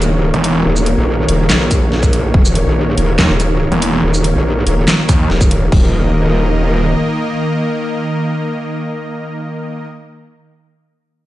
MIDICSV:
0, 0, Header, 1, 5, 480
1, 0, Start_track
1, 0, Tempo, 422535
1, 740, Time_signature, 4, 2, 24, 8
1, 12791, End_track
2, 0, Start_track
2, 0, Title_t, "Supersaw synth"
2, 0, Program_c, 0, 81
2, 0, Note_on_c, 0, 51, 86
2, 0, Note_on_c, 0, 58, 77
2, 0, Note_on_c, 0, 70, 78
2, 0, Note_on_c, 0, 73, 90
2, 6454, Note_off_c, 0, 51, 0
2, 6454, Note_off_c, 0, 58, 0
2, 6454, Note_off_c, 0, 70, 0
2, 6480, Note_off_c, 0, 73, 0
2, 6500, Note_on_c, 0, 51, 83
2, 6500, Note_on_c, 0, 58, 75
2, 6500, Note_on_c, 0, 70, 77
2, 6500, Note_on_c, 0, 75, 92
2, 11203, Note_off_c, 0, 58, 0
2, 11203, Note_off_c, 0, 70, 0
2, 11203, Note_off_c, 0, 75, 0
2, 11204, Note_off_c, 0, 51, 0
2, 12791, End_track
3, 0, Start_track
3, 0, Title_t, "Detuned saw bass"
3, 0, Program_c, 1, 39
3, 384, Note_on_c, 1, 28, 98
3, 722, Note_off_c, 1, 28, 0
3, 3620, Note_on_c, 1, 39, 98
3, 3724, Note_off_c, 1, 39, 0
3, 4224, Note_on_c, 1, 28, 97
3, 4561, Note_off_c, 1, 28, 0
3, 5780, Note_on_c, 1, 39, 94
3, 6001, Note_off_c, 1, 39, 0
3, 12791, End_track
4, 0, Start_track
4, 0, Title_t, "Wobble bass"
4, 0, Program_c, 2, 39
4, 0, Note_on_c, 2, 27, 99
4, 364, Note_off_c, 2, 27, 0
4, 740, Note_on_c, 2, 27, 96
4, 1084, Note_off_c, 2, 27, 0
4, 1103, Note_on_c, 2, 34, 101
4, 1441, Note_off_c, 2, 34, 0
4, 1460, Note_on_c, 2, 27, 96
4, 1681, Note_off_c, 2, 27, 0
4, 1700, Note_on_c, 2, 34, 98
4, 2641, Note_off_c, 2, 34, 0
4, 2660, Note_on_c, 2, 27, 101
4, 3004, Note_off_c, 2, 27, 0
4, 3023, Note_on_c, 2, 34, 96
4, 3361, Note_off_c, 2, 34, 0
4, 3379, Note_on_c, 2, 27, 96
4, 3601, Note_off_c, 2, 27, 0
4, 3744, Note_on_c, 2, 27, 98
4, 4204, Note_off_c, 2, 27, 0
4, 4580, Note_on_c, 2, 27, 100
4, 4924, Note_off_c, 2, 27, 0
4, 4944, Note_on_c, 2, 34, 102
4, 5281, Note_off_c, 2, 34, 0
4, 5300, Note_on_c, 2, 27, 95
4, 5522, Note_off_c, 2, 27, 0
4, 6020, Note_on_c, 2, 27, 104
4, 6481, Note_off_c, 2, 27, 0
4, 6500, Note_on_c, 2, 27, 100
4, 7895, Note_off_c, 2, 27, 0
4, 12791, End_track
5, 0, Start_track
5, 0, Title_t, "Drums"
5, 20, Note_on_c, 9, 42, 76
5, 20, Note_on_c, 9, 82, 51
5, 133, Note_off_c, 9, 42, 0
5, 133, Note_off_c, 9, 82, 0
5, 384, Note_on_c, 9, 42, 34
5, 498, Note_off_c, 9, 42, 0
5, 500, Note_on_c, 9, 42, 81
5, 614, Note_off_c, 9, 42, 0
5, 864, Note_on_c, 9, 82, 66
5, 977, Note_off_c, 9, 82, 0
5, 980, Note_on_c, 9, 42, 84
5, 1094, Note_off_c, 9, 42, 0
5, 1460, Note_on_c, 9, 42, 84
5, 1574, Note_off_c, 9, 42, 0
5, 1700, Note_on_c, 9, 38, 121
5, 1700, Note_on_c, 9, 39, 90
5, 1700, Note_on_c, 9, 82, 84
5, 1814, Note_off_c, 9, 38, 0
5, 1814, Note_off_c, 9, 39, 0
5, 1814, Note_off_c, 9, 82, 0
5, 1940, Note_on_c, 9, 36, 64
5, 1940, Note_on_c, 9, 42, 82
5, 1940, Note_on_c, 9, 82, 56
5, 2054, Note_off_c, 9, 36, 0
5, 2054, Note_off_c, 9, 42, 0
5, 2054, Note_off_c, 9, 82, 0
5, 2180, Note_on_c, 9, 38, 37
5, 2294, Note_off_c, 9, 38, 0
5, 2304, Note_on_c, 9, 36, 59
5, 2304, Note_on_c, 9, 42, 36
5, 2304, Note_on_c, 9, 82, 64
5, 2417, Note_off_c, 9, 36, 0
5, 2417, Note_off_c, 9, 42, 0
5, 2417, Note_off_c, 9, 82, 0
5, 2420, Note_on_c, 9, 42, 83
5, 2534, Note_off_c, 9, 42, 0
5, 2660, Note_on_c, 9, 36, 116
5, 2773, Note_off_c, 9, 36, 0
5, 2784, Note_on_c, 9, 82, 66
5, 2897, Note_off_c, 9, 82, 0
5, 2900, Note_on_c, 9, 42, 88
5, 3014, Note_off_c, 9, 42, 0
5, 3380, Note_on_c, 9, 42, 84
5, 3494, Note_off_c, 9, 42, 0
5, 3620, Note_on_c, 9, 38, 113
5, 3620, Note_on_c, 9, 39, 91
5, 3734, Note_off_c, 9, 38, 0
5, 3734, Note_off_c, 9, 39, 0
5, 3860, Note_on_c, 9, 42, 84
5, 3860, Note_on_c, 9, 82, 58
5, 3974, Note_off_c, 9, 42, 0
5, 3974, Note_off_c, 9, 82, 0
5, 4224, Note_on_c, 9, 42, 38
5, 4337, Note_off_c, 9, 42, 0
5, 4340, Note_on_c, 9, 42, 85
5, 4454, Note_off_c, 9, 42, 0
5, 4704, Note_on_c, 9, 82, 65
5, 4817, Note_off_c, 9, 82, 0
5, 4820, Note_on_c, 9, 42, 88
5, 4934, Note_off_c, 9, 42, 0
5, 5300, Note_on_c, 9, 42, 81
5, 5414, Note_off_c, 9, 42, 0
5, 5540, Note_on_c, 9, 38, 113
5, 5540, Note_on_c, 9, 39, 89
5, 5540, Note_on_c, 9, 82, 84
5, 5654, Note_off_c, 9, 38, 0
5, 5654, Note_off_c, 9, 39, 0
5, 5654, Note_off_c, 9, 82, 0
5, 5780, Note_on_c, 9, 36, 61
5, 5780, Note_on_c, 9, 42, 85
5, 5780, Note_on_c, 9, 82, 54
5, 5894, Note_off_c, 9, 36, 0
5, 5894, Note_off_c, 9, 42, 0
5, 5894, Note_off_c, 9, 82, 0
5, 6020, Note_on_c, 9, 38, 38
5, 6134, Note_off_c, 9, 38, 0
5, 6144, Note_on_c, 9, 36, 59
5, 6144, Note_on_c, 9, 42, 38
5, 6144, Note_on_c, 9, 82, 64
5, 6257, Note_off_c, 9, 36, 0
5, 6257, Note_off_c, 9, 42, 0
5, 6257, Note_off_c, 9, 82, 0
5, 6260, Note_on_c, 9, 42, 91
5, 6374, Note_off_c, 9, 42, 0
5, 6500, Note_on_c, 9, 36, 115
5, 6501, Note_on_c, 9, 49, 87
5, 6614, Note_off_c, 9, 36, 0
5, 6614, Note_off_c, 9, 49, 0
5, 12791, End_track
0, 0, End_of_file